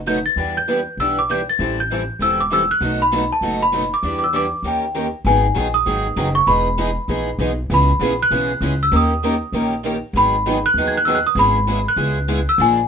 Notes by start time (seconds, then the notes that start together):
Already playing: F#1
0.06 B2 F#3 A3 D#4 F#4 B4 G6
0.26 A6
0.36 E2 E3 G3 B3 D4 E4 G4 B4
0.57 G6
0.68 E3 G3 B3 D4 E4 G4 B4
0.97 B1 E3 G3 B3 D4 E4 G4 B4 E6
1.19 D6
1.29 E3 G3 B3 D4 E4 G4 B4 G6
1.49 A6
1.59 A1 E3 G3 C4 E4 A4
1.80 G6
1.90 E3 G3 C4 E4 A4
2.19 E1 E3 G3 C4 E4 A4 E6
2.40 D6
2.50 E3 G3 C4 E4 A4 E6
2.71 F#6
2.81 B1 B2 D#3 F#3 A3 B3 D#4 F#4 A4
3.02 B5
3.13 B2 D#3 F#3 A3 B3 D#4 F#4 A4
3.32 A5
3.41 F#1 B2 D#3 F#3 A3 B3 D#4 F#4 A4
3.63 B5
3.73 B2 D#3 F#3 A3 B3 D#4 F#4 A4
3.94 D6
4.03 E2 E3 G3 B3 D4 E4 G4 B4
4.19 D6
4.24 E6
4.33 E3 G3 B3 D4 E4 G4 B4 D6
4.63 D#2 D#3 A#3 C#4 G4 A#4
4.68 G5
4.96 D#3 A#3 C#4 G4 A#4
5.25 G#1 D#3 F#3 B3 D#4 G#4 G#5
5.56 A#1 D#3 F#3 B3 D#4 G#4
5.74 D#6
5.86 G#1 D#3 F#3 B3 D#4 G#4
6.16 F#1 D#3 F#3 B3 D#4 G#4
6.35 C#6
6.46 E1 E3 G#3 B3 D#4 G#4 B5
6.78 E3 G#3 B3 D#4 G#4
7.08 A#1 E3 G#3 B3 D#4 G#4
7.38 B1 E3 G#3 B3 D#4 G#4
7.70 C#2 C#3 E3 G#3 B3 C#4 E4 G#4
7.74 B5
7.99 A#1 C#3 E3 G#3 B3 C#4 E4 G#4
8.23 F#6
8.31 B1 C#3 E3 G#3 B3 C#4 E4 G#4
8.61 C#2 C#3 E3 G#3 B3 C#4 E4 G#4
8.83 E6
8.92 D#2 D#3 A#3 C#4 G4 A#4
8.96 D#6
9.23 D#3 A#3 C#4 G4 A#4
9.52 A#1 D#3 A#3 C#4 G4 A#4
9.83 D#3 A#3 C#4 G4 A#4
10.13 G#1 D#3 F#3 B3 D#4 G#4 B5
10.46 D#3 F#3 B3 D#4 G#4
10.66 F#6
10.74 D#2 D#3 F#3 B3 D#4 G#4
10.88 G#6
10.97 F#6
11.05 D#3 F#3 B3 D#4 G#4 E6
11.15 F#6
11.27 D#6
11.35 G#1 C#3 G#3 B3 E4 G#4
11.39 B5
11.69 C#3 G#3 B3 E4 G#4
11.88 F#6
11.96 C#2 C#3 G#3 B3 E4 G#4
12.28 C#3 G#3 B3 E4 G#4
12.49 E6
12.58 A#1 D3 F3 G#3 A#3 D4 F4 G#4 A#4 G#5